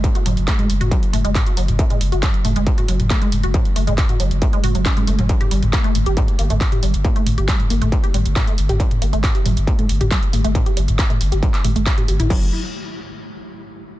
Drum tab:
CC |----------------|----------------|----------------|----------------|
HH |xxoxxxoxxxoxxxox|xxoxxxoxxxoxxxox|xxoxxxoxxxoxxxox|xxoxxxoxxxoxxxox|
CP |----x-------x---|----x-------x---|----x-------x---|----x-------x---|
T2 |o-o--o-o--o-o--o|-o--o-o--o-o--o-|o--o-o--o-o--o-o|-o-o--o-o--o-o--|
BD |o---o---o---o---|o---o---o---o---|o---o---o---o---|o---o---o---o---|

CC |----------------|----------------|----------------|x---------------|
HH |xxoxxxoxxxoxxxox|xxoxxxoxxxoxxxox|xxoxxxoxxxoxxxox|----------------|
CP |----x-------x---|----x-------x---|----x----x--x---|----------------|
T2 |o-o--o-o--o-o--o|-o--o-o--o-o--o-|o--o-o--o-o--o-o|----------------|
BD |o---o---o---o---|o---o---o---o---|o---o---o---o---|o---------------|